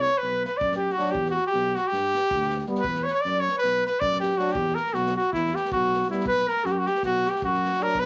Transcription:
0.01 clarinet C#5, trumpet C#5
0.05 snare
0.18 trumpet B4, clarinet B4
0.23 tuba B1, snare
0.44 trumpet B4, clarinet B4, snare
0.57 trumpet D5, clarinet D5, kick
0.61 tuba F#2
0.71 snare
0.76 trumpet G4, clarinet G4
0.90 trumpet F#4, clarinet F#4, snare
0.98 euphonium F#3, french horn D4, snare
1.06 snare
1.11 trumpet G4, clarinet G4, kick
1.15 tuba E2
1.25 snare
1.31 trumpet F#4, clarinet F#4
1.36 snare
1.47 trumpet G4, clarinet G4
1.53 tuba B1, snare
1.75 trumpet F#4, clarinet F#4, snare
1.88 trumpet G4, clarinet G4
1.92 tuba G2, snare
2.14 snare
2.31 tuba D2, kick
2.41 snare
2.50 snare
2.58 snare
2.66 euphonium G3, french horn B3, snare
2.75 snare
2.80 trumpet B4
2.84 tuba E2, clarinet B4, kick
2.95 snare
3.03 trumpet C#5, clarinet C#5, snare
3.11 trumpet B4 C#5, clarinet C#5
3.20 clarinet D5, trumpet D5
3.25 tuba F#2, snare
3.40 trumpet C#5, clarinet C#5
3.48 snare
3.58 trumpet B4, clarinet B4
3.64 tuba B1, snare
3.85 trumpet B4, clarinet B4, snare
4.00 tuba F#2, trumpet D5, clarinet D5, kick
4.12 snare
4.20 trumpet G4, clarinet G4, snare
4.31 snare
4.37 euphonium F#3, french horn D4, clarinet F#4, trumpet F#4, snare
4.48 snare
4.52 tuba E2, trumpet G4, kick
4.56 clarinet G4
4.68 snare
4.75 trumpet A#4, clarinet A#4, snare
4.86 snare
4.94 tuba B1, clarinet F#4, trumpet F#4, snare
5.06 snare
5.17 clarinet F#4, trumpet F#4, snare
5.33 tuba E2, trumpet E4, clarinet E4, kick, snare
5.46 snare
5.53 clarinet G4, trumpet G4, snare
5.65 snare
5.72 tuba B1, clarinet F#4, trumpet F#4, kick
5.84 snare
5.93 snare
6.02 snare
6.09 euphonium G3, french horn B3, clarinet E4, trumpet E4, snare
6.20 snare
6.25 tuba B1, trumpet B4, clarinet B4, kick
6.37 snare
6.47 clarinet A#4, trumpet A#4, snare
6.56 snare
6.64 tuba F#2, clarinet F#4, trumpet F#4, snare
6.70 clarinet G4, trumpet G4
6.76 clarinet F#4, trumpet F#4
6.86 trumpet G4, clarinet G4, snare
6.94 snare
7.02 tuba B1, clarinet F#4, trumpet F#4, kick, snare
7.14 snare
7.25 clarinet G4, snare
7.29 trumpet G4
7.35 snare
7.42 tuba F#2, trumpet F#4, clarinet F#4, kick
7.54 snare
7.65 snare
7.72 snare
7.80 euphonium F#3, french horn D4, trumpet A#4, clarinet A#4, snare
7.88 snare
7.95 tuba B1, clarinet B4, kick
8.00 trumpet B4

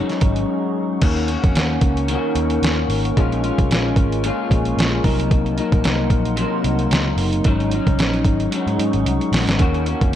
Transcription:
Already playing: clean electric guitar G#2 F#3, ambient pad D#4 G#4 F#5 C#6
0.00 clean electric guitar C#4 D#4
0.09 snare, closed hi-hat
0.21 picked electric bass G#1, kick, closed hi-hat
0.36 closed hi-hat
1.01 picked electric bass D#2, clean electric guitar D#3 A#3 C#4 F#4, ambient pad D#4 A#4 F#5 C#6, kick, closed hi-hat, crash
1.17 closed hi-hat
1.28 clean electric guitar A#3 C#4 F#4, closed hi-hat
1.44 picked electric bass F2, kick, closed hi-hat
1.55 picked electric bass D#2, snare, closed hi-hat
1.81 picked electric bass C#2, kick, closed hi-hat
1.97 closed hi-hat
2.08 clean electric guitar D#3 A#3, closed hi-hat
2.13 clean electric guitar C#4 F#4
2.35 picked electric bass D#2, closed hi-hat
2.50 closed hi-hat
2.62 picked electric bass D#2, snare, closed hi-hat
2.88 picked electric bass G#1, open hi-hat
3.05 closed hi-hat
3.17 picked electric bass A#1, clean electric guitar A#2 G#3 C#4 F4, ambient pad F4 G#5, kick, closed hi-hat
3.32 closed hi-hat
3.43 clean electric guitar G#3 C#4 F4, closed hi-hat
3.58 picked electric bass C2, kick, closed hi-hat
3.70 picked electric bass A#1, snare, closed hi-hat
3.96 picked electric bass G#1, kick, closed hi-hat
4.12 closed hi-hat
4.24 clean electric guitar A#2 G#3 C#4 F4, closed hi-hat
4.51 picked electric bass A#1, kick, closed hi-hat
4.65 closed hi-hat
4.77 picked electric bass A#1, snare, closed hi-hat
5.04 picked electric bass C2, clean electric guitar C3 F#3 A#3 D#4, ambient pad D#4 F#5 C6, kick, open hi-hat
5.20 closed hi-hat
5.31 kick, closed hi-hat
5.46 closed hi-hat
5.58 clean electric guitar F#3 A#3 D#4, closed hi-hat
5.72 picked electric bass A#1, kick, closed hi-hat
5.84 picked electric bass C2, snare, closed hi-hat
6.10 picked electric bass A#1, kick, closed hi-hat
6.25 closed hi-hat
6.37 clean electric guitar C3 F#3, closed hi-hat
6.41 clean electric guitar A#3 D#4
6.64 picked electric bass C2, closed hi-hat
6.79 closed hi-hat
6.91 picked electric bass C#2, snare, closed hi-hat
7.17 picked electric bass F#1, open hi-hat
7.33 closed hi-hat
7.44 picked electric bass G#1, clean electric guitar G#2 F#3 C#4 D#4, ambient pad G#4 F#5 C#6, kick, closed hi-hat
7.60 closed hi-hat
7.71 clean electric guitar C#4 D#4, closed hi-hat
7.76 clean electric guitar F#3
7.87 picked electric bass C2, kick, closed hi-hat
7.99 picked electric bass A#1, snare, closed hi-hat
8.13 closed hi-hat
8.24 picked electric bass G#1, kick, closed hi-hat
8.40 closed hi-hat
8.51 clean electric guitar G#2 F#3, closed hi-hat
8.56 clean electric guitar C#4 D#4
8.67 picked electric bass G#2, closed hi-hat
8.79 picked electric bass G#2, closed hi-hat
8.93 picked electric bass G#1, closed hi-hat
9.05 picked electric bass C2, closed hi-hat
9.21 closed hi-hat
9.32 picked electric bass A#1, snare, open hi-hat
9.47 picked electric bass G#1, snare, closed hi-hat
9.59 picked electric bass D#2, clean electric guitar D#3 A#3 C#4 F#4, ambient pad A#4, kick, closed hi-hat
9.74 closed hi-hat
9.86 clean electric guitar A#3 C#4 F#4, closed hi-hat
10.01 picked electric bass F2, kick, closed hi-hat

